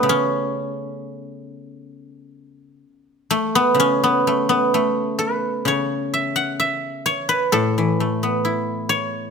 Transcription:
X:1
M:2/4
L:1/16
Q:1/4=64
K:none
V:1 name="Guzheng"
^C4 z4 | z6 A, B, | ^C B, A, B, A,2 B2 | ^c2 e ^f e2 c B |
A6 ^c2 |]
V:2 name="Guzheng" clef=bass
^C,8- | ^C,4 z4 | ^C,8 | ^C,8 |
A,, E, A, B, E4 |]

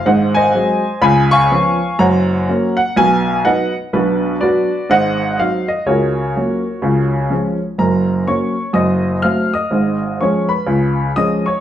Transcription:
X:1
M:4/4
L:1/8
Q:"Swing" 1/4=124
K:F#
V:1 name="Upright piano"
[^Bdf] [Bdg]3 [eg=b] [egc']3 | [cfa]3 f g2 [Bdf] z | [=DFB]2 [FB=d]2 [^B^df]2 e d | [FAc]6- [FAc] z |
[Aa]2 [cc']2 [dd']2 [ee'] [dd']- | [dd']2 [cc'] [Bb]3 [dd'] [cc'] |]
V:2 name="Upright piano" clef=bass
[G,,,G,,]2 [F,G,^B,]2 [C,,C,]2 [E,=B,C]2 | [F,,,F,,]2 [F,A,C]2 [B,,,B,,]2 [F,B,D]2 | [B,,,B,,]2 [F,B,=D]2 [G,,,G,,]2 [F,^B,^D]2 | [C,,C,]2 [F,A,C]2 [C,,C,]2 [E,G,C]2 |
[F,,,F,,]2 [F,A,C]2 [F,,,F,,]2 [F,=A,=C]2 | [G,,,G,,]2 [E,G,C]2 [C,,C,]2 [E,G,C]2 |]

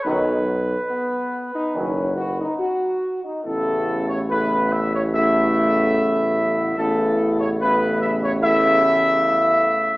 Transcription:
X:1
M:4/4
L:1/16
Q:1/4=72
K:A
V:1 name="Trumpet section"
B12 z4 | A3 c B2 e c e8 | A3 c B2 e c e8 |]
V:2 name="French horn section"
[C^D]2 z2 B,3 D C2 F D F3 D | [B,E]4 [B,E]4 [B,E]8 | [B,E]4 [B,E]4 [B,E]8 |]
V:3 name="Trombone section" clef=bass
[^D,F,]2 z6 [D,F,]2 z6 | [C,A,]4 [C,A,]4 [C,A,]8 | [C,A,]4 [C,A,]4 [C,A,]8 |]
V:4 name="Tuba" clef=bass
B,,,4 z4 F,,,4 z4 | A,,,16 | A,,,12- A,,,2 z2 |]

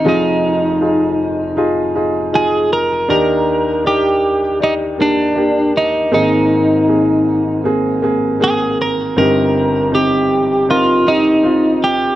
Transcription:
X:1
M:4/4
L:1/8
Q:1/4=79
K:Cm
V:1 name="Clean electric guitar"
E4 z2 A B | B2 G2 E D2 E | E4 z2 A B | B2 G2 F E2 G |]
V:2 name="Grand piano"
[EFA]2 [EFA]2 [EFA] [EFA] [EFA]2 | [DEG]2 [DEB]2 [EGd] [B,DG] [B,Gd]2 | [B,CA]2 [B,CA]2 [B,CA] [B,CA] [B,CA]2 | [CEG]2 [CEG]2 [CEB] [CEG] [CEF]2 |]
V:3 name="Grand piano" clef=bass
[F,,,F,,]8 | [E,,E,]8 | [A,,,A,,]8 | [G,,,G,,]8 |]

